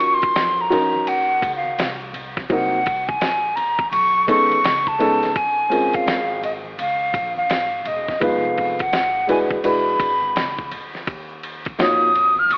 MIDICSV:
0, 0, Header, 1, 5, 480
1, 0, Start_track
1, 0, Key_signature, -5, "minor"
1, 0, Tempo, 714286
1, 1681, Time_signature, 4, 2, 24, 8
1, 8450, End_track
2, 0, Start_track
2, 0, Title_t, "Flute"
2, 0, Program_c, 0, 73
2, 0, Note_on_c, 0, 85, 108
2, 93, Note_on_c, 0, 84, 103
2, 104, Note_off_c, 0, 85, 0
2, 411, Note_on_c, 0, 82, 100
2, 421, Note_off_c, 0, 84, 0
2, 727, Note_on_c, 0, 78, 97
2, 737, Note_off_c, 0, 82, 0
2, 1044, Note_off_c, 0, 78, 0
2, 1050, Note_on_c, 0, 77, 76
2, 1269, Note_off_c, 0, 77, 0
2, 1687, Note_on_c, 0, 78, 90
2, 2070, Note_on_c, 0, 80, 92
2, 2080, Note_off_c, 0, 78, 0
2, 2391, Note_on_c, 0, 82, 85
2, 2401, Note_off_c, 0, 80, 0
2, 2628, Note_off_c, 0, 82, 0
2, 2632, Note_on_c, 0, 85, 116
2, 2860, Note_off_c, 0, 85, 0
2, 2890, Note_on_c, 0, 85, 109
2, 3277, Note_on_c, 0, 81, 111
2, 3287, Note_off_c, 0, 85, 0
2, 3605, Note_on_c, 0, 80, 96
2, 3615, Note_off_c, 0, 81, 0
2, 3999, Note_on_c, 0, 77, 92
2, 4009, Note_off_c, 0, 80, 0
2, 4325, Note_off_c, 0, 77, 0
2, 4330, Note_on_c, 0, 75, 71
2, 4383, Note_off_c, 0, 75, 0
2, 4566, Note_on_c, 0, 77, 94
2, 4927, Note_off_c, 0, 77, 0
2, 4958, Note_on_c, 0, 77, 94
2, 5292, Note_on_c, 0, 75, 81
2, 5302, Note_off_c, 0, 77, 0
2, 5536, Note_on_c, 0, 77, 88
2, 5546, Note_off_c, 0, 75, 0
2, 5856, Note_off_c, 0, 77, 0
2, 5856, Note_on_c, 0, 77, 67
2, 5924, Note_on_c, 0, 78, 93
2, 5934, Note_off_c, 0, 77, 0
2, 6247, Note_off_c, 0, 78, 0
2, 6255, Note_on_c, 0, 80, 73
2, 6308, Note_off_c, 0, 80, 0
2, 6498, Note_on_c, 0, 83, 92
2, 7183, Note_off_c, 0, 83, 0
2, 7940, Note_on_c, 0, 87, 96
2, 8326, Note_on_c, 0, 89, 100
2, 8336, Note_off_c, 0, 87, 0
2, 8420, Note_on_c, 0, 85, 107
2, 8430, Note_off_c, 0, 89, 0
2, 8450, Note_off_c, 0, 85, 0
2, 8450, End_track
3, 0, Start_track
3, 0, Title_t, "Grand piano"
3, 0, Program_c, 1, 0
3, 0, Note_on_c, 1, 54, 72
3, 0, Note_on_c, 1, 61, 67
3, 0, Note_on_c, 1, 63, 60
3, 0, Note_on_c, 1, 65, 67
3, 0, Note_on_c, 1, 70, 76
3, 442, Note_off_c, 1, 54, 0
3, 443, Note_off_c, 1, 61, 0
3, 447, Note_off_c, 1, 63, 0
3, 447, Note_off_c, 1, 65, 0
3, 449, Note_off_c, 1, 70, 0
3, 472, Note_on_c, 1, 66, 78
3, 476, Note_on_c, 1, 61, 68
3, 479, Note_on_c, 1, 63, 69
3, 486, Note_on_c, 1, 70, 78
3, 1161, Note_off_c, 1, 66, 0
3, 1163, Note_off_c, 1, 61, 0
3, 1164, Note_off_c, 1, 63, 0
3, 1168, Note_off_c, 1, 70, 0
3, 1677, Note_on_c, 1, 54, 71
3, 1682, Note_on_c, 1, 58, 68
3, 1683, Note_on_c, 1, 60, 66
3, 1687, Note_on_c, 1, 63, 65
3, 1693, Note_on_c, 1, 70, 75
3, 1865, Note_off_c, 1, 54, 0
3, 1868, Note_off_c, 1, 58, 0
3, 1868, Note_off_c, 1, 60, 0
3, 1870, Note_off_c, 1, 63, 0
3, 1873, Note_off_c, 1, 70, 0
3, 2870, Note_on_c, 1, 56, 70
3, 2875, Note_on_c, 1, 59, 64
3, 2876, Note_on_c, 1, 61, 63
3, 2880, Note_on_c, 1, 63, 66
3, 2882, Note_on_c, 1, 69, 82
3, 3062, Note_off_c, 1, 56, 0
3, 3064, Note_off_c, 1, 59, 0
3, 3065, Note_off_c, 1, 61, 0
3, 3067, Note_off_c, 1, 63, 0
3, 3068, Note_off_c, 1, 69, 0
3, 3350, Note_on_c, 1, 56, 73
3, 3355, Note_on_c, 1, 59, 66
3, 3356, Note_on_c, 1, 61, 67
3, 3359, Note_on_c, 1, 63, 67
3, 3365, Note_on_c, 1, 69, 82
3, 3542, Note_off_c, 1, 56, 0
3, 3544, Note_off_c, 1, 59, 0
3, 3545, Note_off_c, 1, 61, 0
3, 3546, Note_off_c, 1, 63, 0
3, 3550, Note_off_c, 1, 69, 0
3, 3828, Note_on_c, 1, 56, 63
3, 3829, Note_on_c, 1, 60, 61
3, 3836, Note_on_c, 1, 61, 57
3, 3837, Note_on_c, 1, 65, 56
3, 3841, Note_on_c, 1, 70, 69
3, 4135, Note_off_c, 1, 56, 0
3, 4135, Note_off_c, 1, 60, 0
3, 4139, Note_off_c, 1, 61, 0
3, 4139, Note_off_c, 1, 65, 0
3, 4141, Note_off_c, 1, 70, 0
3, 5510, Note_on_c, 1, 56, 61
3, 5516, Note_on_c, 1, 59, 58
3, 5518, Note_on_c, 1, 63, 55
3, 5522, Note_on_c, 1, 65, 61
3, 5526, Note_on_c, 1, 71, 72
3, 5876, Note_off_c, 1, 56, 0
3, 5879, Note_off_c, 1, 59, 0
3, 5880, Note_off_c, 1, 63, 0
3, 5882, Note_off_c, 1, 65, 0
3, 5884, Note_off_c, 1, 71, 0
3, 6232, Note_on_c, 1, 56, 75
3, 6238, Note_on_c, 1, 62, 66
3, 6241, Note_on_c, 1, 64, 67
3, 6246, Note_on_c, 1, 66, 66
3, 6246, Note_on_c, 1, 71, 81
3, 6423, Note_off_c, 1, 56, 0
3, 6426, Note_off_c, 1, 62, 0
3, 6428, Note_off_c, 1, 64, 0
3, 6430, Note_off_c, 1, 66, 0
3, 6430, Note_off_c, 1, 71, 0
3, 6474, Note_on_c, 1, 56, 66
3, 6477, Note_on_c, 1, 62, 58
3, 6480, Note_on_c, 1, 64, 57
3, 6483, Note_on_c, 1, 66, 56
3, 6487, Note_on_c, 1, 71, 70
3, 6778, Note_off_c, 1, 56, 0
3, 6779, Note_off_c, 1, 62, 0
3, 6781, Note_off_c, 1, 64, 0
3, 6782, Note_off_c, 1, 66, 0
3, 6784, Note_off_c, 1, 71, 0
3, 7918, Note_on_c, 1, 58, 66
3, 7920, Note_on_c, 1, 63, 64
3, 7921, Note_on_c, 1, 65, 62
3, 7927, Note_on_c, 1, 66, 65
3, 7933, Note_on_c, 1, 73, 77
3, 8106, Note_off_c, 1, 58, 0
3, 8107, Note_off_c, 1, 63, 0
3, 8108, Note_off_c, 1, 65, 0
3, 8110, Note_off_c, 1, 66, 0
3, 8113, Note_off_c, 1, 73, 0
3, 8450, End_track
4, 0, Start_track
4, 0, Title_t, "Upright bass"
4, 0, Program_c, 2, 32
4, 0, Note_on_c, 2, 39, 106
4, 217, Note_off_c, 2, 39, 0
4, 245, Note_on_c, 2, 41, 97
4, 699, Note_off_c, 2, 41, 0
4, 719, Note_on_c, 2, 39, 91
4, 948, Note_off_c, 2, 39, 0
4, 957, Note_on_c, 2, 37, 93
4, 1187, Note_off_c, 2, 37, 0
4, 1199, Note_on_c, 2, 36, 94
4, 1656, Note_off_c, 2, 36, 0
4, 1679, Note_on_c, 2, 36, 110
4, 2136, Note_off_c, 2, 36, 0
4, 2160, Note_on_c, 2, 34, 91
4, 2616, Note_off_c, 2, 34, 0
4, 2636, Note_on_c, 2, 35, 102
4, 2866, Note_off_c, 2, 35, 0
4, 2877, Note_on_c, 2, 39, 84
4, 3107, Note_off_c, 2, 39, 0
4, 3115, Note_on_c, 2, 37, 101
4, 3574, Note_off_c, 2, 37, 0
4, 3599, Note_on_c, 2, 34, 95
4, 4056, Note_off_c, 2, 34, 0
4, 4074, Note_on_c, 2, 32, 92
4, 4534, Note_off_c, 2, 32, 0
4, 4556, Note_on_c, 2, 37, 82
4, 4786, Note_off_c, 2, 37, 0
4, 4796, Note_on_c, 2, 34, 97
4, 5039, Note_off_c, 2, 34, 0
4, 5039, Note_on_c, 2, 32, 94
4, 5268, Note_off_c, 2, 32, 0
4, 5278, Note_on_c, 2, 28, 87
4, 5508, Note_off_c, 2, 28, 0
4, 5520, Note_on_c, 2, 29, 92
4, 5977, Note_off_c, 2, 29, 0
4, 5996, Note_on_c, 2, 32, 82
4, 6455, Note_off_c, 2, 32, 0
4, 6483, Note_on_c, 2, 28, 93
4, 6710, Note_off_c, 2, 28, 0
4, 6718, Note_on_c, 2, 32, 84
4, 6947, Note_off_c, 2, 32, 0
4, 6958, Note_on_c, 2, 37, 92
4, 7188, Note_off_c, 2, 37, 0
4, 7200, Note_on_c, 2, 38, 77
4, 7429, Note_off_c, 2, 38, 0
4, 7442, Note_on_c, 2, 39, 97
4, 7898, Note_off_c, 2, 39, 0
4, 7920, Note_on_c, 2, 41, 96
4, 8376, Note_off_c, 2, 41, 0
4, 8397, Note_on_c, 2, 39, 86
4, 8450, Note_off_c, 2, 39, 0
4, 8450, End_track
5, 0, Start_track
5, 0, Title_t, "Drums"
5, 3, Note_on_c, 9, 51, 60
5, 70, Note_off_c, 9, 51, 0
5, 148, Note_on_c, 9, 51, 43
5, 149, Note_on_c, 9, 82, 45
5, 155, Note_on_c, 9, 36, 101
5, 215, Note_off_c, 9, 51, 0
5, 216, Note_off_c, 9, 82, 0
5, 222, Note_off_c, 9, 36, 0
5, 239, Note_on_c, 9, 82, 62
5, 240, Note_on_c, 9, 44, 47
5, 240, Note_on_c, 9, 51, 60
5, 243, Note_on_c, 9, 38, 115
5, 306, Note_off_c, 9, 82, 0
5, 307, Note_off_c, 9, 44, 0
5, 307, Note_off_c, 9, 51, 0
5, 311, Note_off_c, 9, 38, 0
5, 384, Note_on_c, 9, 82, 46
5, 452, Note_off_c, 9, 82, 0
5, 481, Note_on_c, 9, 64, 63
5, 481, Note_on_c, 9, 82, 42
5, 484, Note_on_c, 9, 51, 60
5, 548, Note_off_c, 9, 64, 0
5, 548, Note_off_c, 9, 82, 0
5, 551, Note_off_c, 9, 51, 0
5, 627, Note_on_c, 9, 63, 63
5, 627, Note_on_c, 9, 82, 45
5, 694, Note_off_c, 9, 63, 0
5, 694, Note_off_c, 9, 82, 0
5, 720, Note_on_c, 9, 51, 86
5, 720, Note_on_c, 9, 63, 49
5, 720, Note_on_c, 9, 82, 71
5, 787, Note_off_c, 9, 51, 0
5, 787, Note_off_c, 9, 63, 0
5, 787, Note_off_c, 9, 82, 0
5, 871, Note_on_c, 9, 82, 40
5, 938, Note_off_c, 9, 82, 0
5, 952, Note_on_c, 9, 64, 71
5, 952, Note_on_c, 9, 82, 53
5, 958, Note_on_c, 9, 36, 93
5, 963, Note_on_c, 9, 51, 62
5, 1019, Note_off_c, 9, 64, 0
5, 1019, Note_off_c, 9, 82, 0
5, 1025, Note_off_c, 9, 36, 0
5, 1030, Note_off_c, 9, 51, 0
5, 1104, Note_on_c, 9, 63, 65
5, 1104, Note_on_c, 9, 82, 44
5, 1172, Note_off_c, 9, 63, 0
5, 1172, Note_off_c, 9, 82, 0
5, 1197, Note_on_c, 9, 82, 62
5, 1201, Note_on_c, 9, 44, 59
5, 1201, Note_on_c, 9, 51, 81
5, 1208, Note_on_c, 9, 38, 105
5, 1264, Note_off_c, 9, 82, 0
5, 1269, Note_off_c, 9, 44, 0
5, 1269, Note_off_c, 9, 51, 0
5, 1275, Note_off_c, 9, 38, 0
5, 1347, Note_on_c, 9, 82, 45
5, 1414, Note_off_c, 9, 82, 0
5, 1432, Note_on_c, 9, 64, 63
5, 1432, Note_on_c, 9, 82, 47
5, 1439, Note_on_c, 9, 51, 60
5, 1500, Note_off_c, 9, 64, 0
5, 1500, Note_off_c, 9, 82, 0
5, 1506, Note_off_c, 9, 51, 0
5, 1586, Note_on_c, 9, 82, 50
5, 1593, Note_on_c, 9, 36, 86
5, 1594, Note_on_c, 9, 38, 33
5, 1653, Note_off_c, 9, 82, 0
5, 1660, Note_off_c, 9, 36, 0
5, 1661, Note_off_c, 9, 38, 0
5, 1667, Note_on_c, 9, 82, 66
5, 1679, Note_on_c, 9, 36, 110
5, 1680, Note_on_c, 9, 51, 69
5, 1735, Note_off_c, 9, 82, 0
5, 1747, Note_off_c, 9, 36, 0
5, 1747, Note_off_c, 9, 51, 0
5, 1828, Note_on_c, 9, 82, 52
5, 1895, Note_off_c, 9, 82, 0
5, 1920, Note_on_c, 9, 51, 64
5, 1921, Note_on_c, 9, 82, 45
5, 1925, Note_on_c, 9, 36, 105
5, 1987, Note_off_c, 9, 51, 0
5, 1988, Note_off_c, 9, 82, 0
5, 1993, Note_off_c, 9, 36, 0
5, 2074, Note_on_c, 9, 36, 105
5, 2075, Note_on_c, 9, 82, 45
5, 2141, Note_off_c, 9, 36, 0
5, 2142, Note_off_c, 9, 82, 0
5, 2159, Note_on_c, 9, 44, 46
5, 2159, Note_on_c, 9, 51, 63
5, 2160, Note_on_c, 9, 82, 60
5, 2162, Note_on_c, 9, 38, 120
5, 2226, Note_off_c, 9, 44, 0
5, 2226, Note_off_c, 9, 51, 0
5, 2227, Note_off_c, 9, 82, 0
5, 2229, Note_off_c, 9, 38, 0
5, 2304, Note_on_c, 9, 82, 42
5, 2371, Note_off_c, 9, 82, 0
5, 2400, Note_on_c, 9, 51, 60
5, 2400, Note_on_c, 9, 64, 65
5, 2400, Note_on_c, 9, 82, 44
5, 2467, Note_off_c, 9, 51, 0
5, 2467, Note_off_c, 9, 64, 0
5, 2467, Note_off_c, 9, 82, 0
5, 2545, Note_on_c, 9, 63, 63
5, 2545, Note_on_c, 9, 82, 47
5, 2546, Note_on_c, 9, 36, 95
5, 2612, Note_off_c, 9, 63, 0
5, 2612, Note_off_c, 9, 82, 0
5, 2613, Note_off_c, 9, 36, 0
5, 2631, Note_on_c, 9, 63, 50
5, 2631, Note_on_c, 9, 82, 73
5, 2640, Note_on_c, 9, 51, 84
5, 2699, Note_off_c, 9, 63, 0
5, 2699, Note_off_c, 9, 82, 0
5, 2707, Note_off_c, 9, 51, 0
5, 2790, Note_on_c, 9, 82, 44
5, 2857, Note_off_c, 9, 82, 0
5, 2871, Note_on_c, 9, 64, 75
5, 2871, Note_on_c, 9, 82, 54
5, 2877, Note_on_c, 9, 36, 95
5, 2882, Note_on_c, 9, 51, 63
5, 2938, Note_off_c, 9, 64, 0
5, 2938, Note_off_c, 9, 82, 0
5, 2944, Note_off_c, 9, 36, 0
5, 2949, Note_off_c, 9, 51, 0
5, 3023, Note_on_c, 9, 63, 62
5, 3023, Note_on_c, 9, 82, 46
5, 3034, Note_on_c, 9, 51, 38
5, 3090, Note_off_c, 9, 63, 0
5, 3090, Note_off_c, 9, 82, 0
5, 3101, Note_off_c, 9, 51, 0
5, 3116, Note_on_c, 9, 82, 68
5, 3120, Note_on_c, 9, 44, 55
5, 3120, Note_on_c, 9, 51, 79
5, 3127, Note_on_c, 9, 38, 118
5, 3183, Note_off_c, 9, 82, 0
5, 3188, Note_off_c, 9, 44, 0
5, 3188, Note_off_c, 9, 51, 0
5, 3194, Note_off_c, 9, 38, 0
5, 3270, Note_on_c, 9, 36, 77
5, 3271, Note_on_c, 9, 82, 48
5, 3338, Note_off_c, 9, 36, 0
5, 3339, Note_off_c, 9, 82, 0
5, 3356, Note_on_c, 9, 64, 62
5, 3356, Note_on_c, 9, 82, 47
5, 3361, Note_on_c, 9, 51, 61
5, 3424, Note_off_c, 9, 64, 0
5, 3424, Note_off_c, 9, 82, 0
5, 3428, Note_off_c, 9, 51, 0
5, 3511, Note_on_c, 9, 82, 52
5, 3512, Note_on_c, 9, 51, 41
5, 3517, Note_on_c, 9, 38, 38
5, 3579, Note_off_c, 9, 82, 0
5, 3580, Note_off_c, 9, 51, 0
5, 3584, Note_off_c, 9, 38, 0
5, 3593, Note_on_c, 9, 82, 65
5, 3599, Note_on_c, 9, 36, 114
5, 3599, Note_on_c, 9, 51, 64
5, 3660, Note_off_c, 9, 82, 0
5, 3666, Note_off_c, 9, 36, 0
5, 3666, Note_off_c, 9, 51, 0
5, 3748, Note_on_c, 9, 82, 46
5, 3815, Note_off_c, 9, 82, 0
5, 3841, Note_on_c, 9, 51, 62
5, 3842, Note_on_c, 9, 82, 44
5, 3908, Note_off_c, 9, 51, 0
5, 3909, Note_off_c, 9, 82, 0
5, 3987, Note_on_c, 9, 51, 39
5, 3994, Note_on_c, 9, 36, 89
5, 3994, Note_on_c, 9, 82, 44
5, 4055, Note_off_c, 9, 51, 0
5, 4061, Note_off_c, 9, 36, 0
5, 4061, Note_off_c, 9, 82, 0
5, 4082, Note_on_c, 9, 44, 40
5, 4082, Note_on_c, 9, 51, 58
5, 4085, Note_on_c, 9, 38, 112
5, 4087, Note_on_c, 9, 82, 61
5, 4149, Note_off_c, 9, 44, 0
5, 4149, Note_off_c, 9, 51, 0
5, 4152, Note_off_c, 9, 38, 0
5, 4155, Note_off_c, 9, 82, 0
5, 4224, Note_on_c, 9, 82, 43
5, 4291, Note_off_c, 9, 82, 0
5, 4317, Note_on_c, 9, 64, 61
5, 4317, Note_on_c, 9, 82, 42
5, 4323, Note_on_c, 9, 51, 60
5, 4384, Note_off_c, 9, 64, 0
5, 4384, Note_off_c, 9, 82, 0
5, 4390, Note_off_c, 9, 51, 0
5, 4460, Note_on_c, 9, 63, 59
5, 4460, Note_on_c, 9, 82, 42
5, 4527, Note_off_c, 9, 63, 0
5, 4527, Note_off_c, 9, 82, 0
5, 4557, Note_on_c, 9, 63, 45
5, 4557, Note_on_c, 9, 82, 73
5, 4560, Note_on_c, 9, 51, 81
5, 4625, Note_off_c, 9, 63, 0
5, 4625, Note_off_c, 9, 82, 0
5, 4628, Note_off_c, 9, 51, 0
5, 4706, Note_on_c, 9, 82, 40
5, 4773, Note_off_c, 9, 82, 0
5, 4789, Note_on_c, 9, 63, 50
5, 4789, Note_on_c, 9, 64, 72
5, 4789, Note_on_c, 9, 82, 50
5, 4796, Note_on_c, 9, 36, 87
5, 4801, Note_on_c, 9, 51, 61
5, 4856, Note_off_c, 9, 63, 0
5, 4856, Note_off_c, 9, 64, 0
5, 4856, Note_off_c, 9, 82, 0
5, 4864, Note_off_c, 9, 36, 0
5, 4869, Note_off_c, 9, 51, 0
5, 4941, Note_on_c, 9, 63, 58
5, 4941, Note_on_c, 9, 82, 42
5, 5008, Note_off_c, 9, 63, 0
5, 5008, Note_off_c, 9, 82, 0
5, 5032, Note_on_c, 9, 82, 63
5, 5038, Note_on_c, 9, 44, 52
5, 5038, Note_on_c, 9, 51, 72
5, 5045, Note_on_c, 9, 38, 106
5, 5099, Note_off_c, 9, 82, 0
5, 5105, Note_off_c, 9, 44, 0
5, 5105, Note_off_c, 9, 51, 0
5, 5112, Note_off_c, 9, 38, 0
5, 5185, Note_on_c, 9, 82, 44
5, 5253, Note_off_c, 9, 82, 0
5, 5273, Note_on_c, 9, 64, 62
5, 5273, Note_on_c, 9, 82, 43
5, 5279, Note_on_c, 9, 51, 61
5, 5340, Note_off_c, 9, 64, 0
5, 5340, Note_off_c, 9, 82, 0
5, 5346, Note_off_c, 9, 51, 0
5, 5428, Note_on_c, 9, 82, 52
5, 5433, Note_on_c, 9, 36, 78
5, 5435, Note_on_c, 9, 38, 35
5, 5495, Note_off_c, 9, 82, 0
5, 5500, Note_off_c, 9, 36, 0
5, 5503, Note_off_c, 9, 38, 0
5, 5508, Note_on_c, 9, 82, 65
5, 5520, Note_on_c, 9, 36, 118
5, 5522, Note_on_c, 9, 51, 63
5, 5575, Note_off_c, 9, 82, 0
5, 5587, Note_off_c, 9, 36, 0
5, 5589, Note_off_c, 9, 51, 0
5, 5669, Note_on_c, 9, 82, 46
5, 5736, Note_off_c, 9, 82, 0
5, 5760, Note_on_c, 9, 82, 47
5, 5762, Note_on_c, 9, 51, 62
5, 5766, Note_on_c, 9, 36, 101
5, 5827, Note_off_c, 9, 82, 0
5, 5829, Note_off_c, 9, 51, 0
5, 5833, Note_off_c, 9, 36, 0
5, 5909, Note_on_c, 9, 51, 43
5, 5911, Note_on_c, 9, 82, 44
5, 5915, Note_on_c, 9, 36, 94
5, 5976, Note_off_c, 9, 51, 0
5, 5979, Note_off_c, 9, 82, 0
5, 5982, Note_off_c, 9, 36, 0
5, 6000, Note_on_c, 9, 44, 41
5, 6000, Note_on_c, 9, 51, 59
5, 6003, Note_on_c, 9, 38, 110
5, 6010, Note_on_c, 9, 82, 60
5, 6067, Note_off_c, 9, 44, 0
5, 6067, Note_off_c, 9, 51, 0
5, 6071, Note_off_c, 9, 38, 0
5, 6077, Note_off_c, 9, 82, 0
5, 6152, Note_on_c, 9, 82, 43
5, 6219, Note_off_c, 9, 82, 0
5, 6242, Note_on_c, 9, 51, 59
5, 6244, Note_on_c, 9, 64, 62
5, 6244, Note_on_c, 9, 82, 43
5, 6309, Note_off_c, 9, 51, 0
5, 6311, Note_off_c, 9, 64, 0
5, 6311, Note_off_c, 9, 82, 0
5, 6388, Note_on_c, 9, 36, 93
5, 6391, Note_on_c, 9, 63, 63
5, 6391, Note_on_c, 9, 82, 45
5, 6455, Note_off_c, 9, 36, 0
5, 6458, Note_off_c, 9, 63, 0
5, 6458, Note_off_c, 9, 82, 0
5, 6479, Note_on_c, 9, 51, 84
5, 6482, Note_on_c, 9, 63, 51
5, 6482, Note_on_c, 9, 82, 70
5, 6546, Note_off_c, 9, 51, 0
5, 6549, Note_off_c, 9, 63, 0
5, 6549, Note_off_c, 9, 82, 0
5, 6634, Note_on_c, 9, 82, 41
5, 6701, Note_off_c, 9, 82, 0
5, 6713, Note_on_c, 9, 63, 53
5, 6713, Note_on_c, 9, 64, 73
5, 6713, Note_on_c, 9, 82, 50
5, 6719, Note_on_c, 9, 36, 89
5, 6722, Note_on_c, 9, 51, 58
5, 6780, Note_off_c, 9, 63, 0
5, 6780, Note_off_c, 9, 64, 0
5, 6780, Note_off_c, 9, 82, 0
5, 6786, Note_off_c, 9, 36, 0
5, 6789, Note_off_c, 9, 51, 0
5, 6869, Note_on_c, 9, 63, 61
5, 6869, Note_on_c, 9, 82, 42
5, 6936, Note_off_c, 9, 63, 0
5, 6936, Note_off_c, 9, 82, 0
5, 6959, Note_on_c, 9, 82, 59
5, 6962, Note_on_c, 9, 44, 57
5, 6962, Note_on_c, 9, 51, 80
5, 6968, Note_on_c, 9, 38, 102
5, 7026, Note_off_c, 9, 82, 0
5, 7029, Note_off_c, 9, 44, 0
5, 7029, Note_off_c, 9, 51, 0
5, 7035, Note_off_c, 9, 38, 0
5, 7108, Note_on_c, 9, 82, 46
5, 7114, Note_on_c, 9, 36, 76
5, 7175, Note_off_c, 9, 82, 0
5, 7181, Note_off_c, 9, 36, 0
5, 7197, Note_on_c, 9, 64, 60
5, 7197, Note_on_c, 9, 82, 42
5, 7201, Note_on_c, 9, 51, 59
5, 7264, Note_off_c, 9, 64, 0
5, 7264, Note_off_c, 9, 82, 0
5, 7268, Note_off_c, 9, 51, 0
5, 7346, Note_on_c, 9, 82, 50
5, 7358, Note_on_c, 9, 38, 35
5, 7413, Note_off_c, 9, 82, 0
5, 7425, Note_off_c, 9, 38, 0
5, 7428, Note_on_c, 9, 82, 61
5, 7442, Note_on_c, 9, 36, 109
5, 7442, Note_on_c, 9, 51, 67
5, 7495, Note_off_c, 9, 82, 0
5, 7509, Note_off_c, 9, 36, 0
5, 7509, Note_off_c, 9, 51, 0
5, 7587, Note_on_c, 9, 82, 46
5, 7654, Note_off_c, 9, 82, 0
5, 7681, Note_on_c, 9, 82, 43
5, 7684, Note_on_c, 9, 51, 62
5, 7749, Note_off_c, 9, 82, 0
5, 7751, Note_off_c, 9, 51, 0
5, 7827, Note_on_c, 9, 82, 44
5, 7829, Note_on_c, 9, 51, 42
5, 7837, Note_on_c, 9, 36, 95
5, 7894, Note_off_c, 9, 82, 0
5, 7896, Note_off_c, 9, 51, 0
5, 7904, Note_off_c, 9, 36, 0
5, 7920, Note_on_c, 9, 82, 60
5, 7925, Note_on_c, 9, 44, 42
5, 7925, Note_on_c, 9, 51, 57
5, 7928, Note_on_c, 9, 38, 115
5, 7988, Note_off_c, 9, 82, 0
5, 7992, Note_off_c, 9, 44, 0
5, 7992, Note_off_c, 9, 51, 0
5, 7995, Note_off_c, 9, 38, 0
5, 8064, Note_on_c, 9, 82, 45
5, 8131, Note_off_c, 9, 82, 0
5, 8160, Note_on_c, 9, 64, 59
5, 8160, Note_on_c, 9, 82, 44
5, 8166, Note_on_c, 9, 51, 56
5, 8227, Note_off_c, 9, 64, 0
5, 8227, Note_off_c, 9, 82, 0
5, 8233, Note_off_c, 9, 51, 0
5, 8305, Note_on_c, 9, 63, 60
5, 8305, Note_on_c, 9, 82, 43
5, 8372, Note_off_c, 9, 63, 0
5, 8372, Note_off_c, 9, 82, 0
5, 8393, Note_on_c, 9, 63, 51
5, 8393, Note_on_c, 9, 82, 67
5, 8403, Note_on_c, 9, 51, 83
5, 8450, Note_off_c, 9, 51, 0
5, 8450, Note_off_c, 9, 63, 0
5, 8450, Note_off_c, 9, 82, 0
5, 8450, End_track
0, 0, End_of_file